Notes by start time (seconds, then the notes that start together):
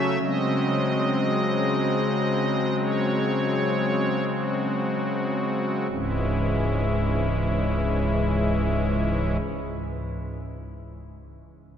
Already playing: C#3 F#3 A3 C#4 E5
0.22 C#3 F#3 G#3 C4 D#5
2.80 C#5
4.28 F#4
5.90 C#1 C#2 G#2 E3 G#3 C#4 E4